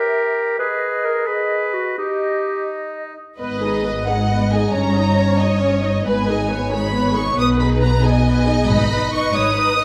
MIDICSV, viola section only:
0, 0, Header, 1, 2, 480
1, 0, Start_track
1, 0, Key_signature, 5, "minor"
1, 0, Tempo, 453172
1, 616, Time_signature, 6, 3, 24, 8
1, 1587, Tempo, 471698
1, 3987, Tempo, 443459
1, 6867, Tempo, 434783
1, 10539, End_track
2, 0, Start_track
2, 0, Title_t, "Viola section"
2, 0, Program_c, 0, 48
2, 3523, Note_on_c, 0, 59, 34
2, 3523, Note_on_c, 0, 71, 35
2, 3740, Note_off_c, 0, 59, 0
2, 3741, Note_off_c, 0, 71, 0
2, 3763, Note_on_c, 0, 63, 33
2, 3765, Note_on_c, 0, 68, 35
2, 3991, Note_off_c, 0, 63, 0
2, 3992, Note_off_c, 0, 68, 0
2, 3992, Note_on_c, 0, 71, 30
2, 3995, Note_on_c, 0, 59, 28
2, 4232, Note_off_c, 0, 71, 0
2, 4232, Note_on_c, 0, 63, 31
2, 4233, Note_off_c, 0, 59, 0
2, 4237, Note_on_c, 0, 68, 32
2, 4472, Note_off_c, 0, 63, 0
2, 4475, Note_off_c, 0, 68, 0
2, 4476, Note_on_c, 0, 59, 34
2, 4476, Note_on_c, 0, 71, 36
2, 4698, Note_off_c, 0, 59, 0
2, 4698, Note_off_c, 0, 71, 0
2, 4714, Note_on_c, 0, 63, 27
2, 4714, Note_on_c, 0, 68, 31
2, 4952, Note_off_c, 0, 63, 0
2, 4952, Note_off_c, 0, 68, 0
2, 4953, Note_on_c, 0, 61, 35
2, 4954, Note_on_c, 0, 73, 34
2, 5171, Note_off_c, 0, 61, 0
2, 5172, Note_off_c, 0, 73, 0
2, 5180, Note_on_c, 0, 63, 32
2, 5186, Note_on_c, 0, 75, 35
2, 5418, Note_on_c, 0, 61, 29
2, 5419, Note_off_c, 0, 63, 0
2, 5421, Note_off_c, 0, 75, 0
2, 5421, Note_on_c, 0, 73, 31
2, 5656, Note_off_c, 0, 61, 0
2, 5657, Note_off_c, 0, 73, 0
2, 5657, Note_on_c, 0, 63, 31
2, 5659, Note_on_c, 0, 75, 31
2, 5898, Note_off_c, 0, 63, 0
2, 5899, Note_off_c, 0, 75, 0
2, 5903, Note_on_c, 0, 61, 35
2, 5903, Note_on_c, 0, 73, 39
2, 6131, Note_off_c, 0, 61, 0
2, 6131, Note_off_c, 0, 73, 0
2, 6143, Note_on_c, 0, 63, 29
2, 6146, Note_on_c, 0, 75, 33
2, 6385, Note_on_c, 0, 71, 42
2, 6388, Note_on_c, 0, 59, 40
2, 6391, Note_off_c, 0, 63, 0
2, 6392, Note_off_c, 0, 75, 0
2, 6612, Note_off_c, 0, 71, 0
2, 6613, Note_off_c, 0, 59, 0
2, 6623, Note_on_c, 0, 63, 35
2, 6626, Note_on_c, 0, 68, 35
2, 6864, Note_off_c, 0, 63, 0
2, 6865, Note_off_c, 0, 68, 0
2, 6866, Note_on_c, 0, 71, 32
2, 6868, Note_on_c, 0, 59, 33
2, 7100, Note_on_c, 0, 63, 33
2, 7104, Note_on_c, 0, 68, 32
2, 7106, Note_off_c, 0, 71, 0
2, 7107, Note_off_c, 0, 59, 0
2, 7341, Note_on_c, 0, 71, 37
2, 7342, Note_off_c, 0, 63, 0
2, 7343, Note_on_c, 0, 59, 37
2, 7344, Note_off_c, 0, 68, 0
2, 7565, Note_off_c, 0, 71, 0
2, 7566, Note_off_c, 0, 59, 0
2, 7576, Note_on_c, 0, 68, 33
2, 7581, Note_on_c, 0, 63, 33
2, 7818, Note_off_c, 0, 68, 0
2, 7819, Note_on_c, 0, 71, 42
2, 7820, Note_off_c, 0, 63, 0
2, 7823, Note_on_c, 0, 59, 41
2, 8043, Note_off_c, 0, 71, 0
2, 8045, Note_off_c, 0, 59, 0
2, 8063, Note_on_c, 0, 63, 36
2, 8063, Note_on_c, 0, 68, 38
2, 8303, Note_off_c, 0, 63, 0
2, 8303, Note_off_c, 0, 68, 0
2, 8307, Note_on_c, 0, 59, 34
2, 8307, Note_on_c, 0, 71, 37
2, 8544, Note_on_c, 0, 63, 37
2, 8545, Note_on_c, 0, 68, 41
2, 8546, Note_off_c, 0, 59, 0
2, 8546, Note_off_c, 0, 71, 0
2, 8784, Note_off_c, 0, 63, 0
2, 8785, Note_off_c, 0, 68, 0
2, 8789, Note_on_c, 0, 59, 44
2, 8790, Note_on_c, 0, 71, 39
2, 9010, Note_off_c, 0, 59, 0
2, 9010, Note_off_c, 0, 71, 0
2, 9029, Note_on_c, 0, 68, 35
2, 9031, Note_on_c, 0, 63, 39
2, 9258, Note_off_c, 0, 63, 0
2, 9267, Note_off_c, 0, 68, 0
2, 9271, Note_on_c, 0, 63, 53
2, 9275, Note_on_c, 0, 71, 46
2, 9505, Note_off_c, 0, 63, 0
2, 9507, Note_off_c, 0, 71, 0
2, 9517, Note_on_c, 0, 63, 40
2, 9519, Note_on_c, 0, 71, 41
2, 9744, Note_off_c, 0, 63, 0
2, 9744, Note_off_c, 0, 71, 0
2, 9757, Note_on_c, 0, 63, 43
2, 9757, Note_on_c, 0, 71, 45
2, 9989, Note_off_c, 0, 63, 0
2, 9989, Note_off_c, 0, 71, 0
2, 10006, Note_on_c, 0, 63, 44
2, 10010, Note_on_c, 0, 71, 41
2, 10227, Note_off_c, 0, 71, 0
2, 10228, Note_off_c, 0, 63, 0
2, 10240, Note_on_c, 0, 71, 42
2, 10241, Note_on_c, 0, 63, 45
2, 10463, Note_off_c, 0, 63, 0
2, 10463, Note_off_c, 0, 71, 0
2, 10476, Note_on_c, 0, 63, 39
2, 10477, Note_on_c, 0, 71, 39
2, 10539, Note_off_c, 0, 63, 0
2, 10539, Note_off_c, 0, 71, 0
2, 10539, End_track
0, 0, End_of_file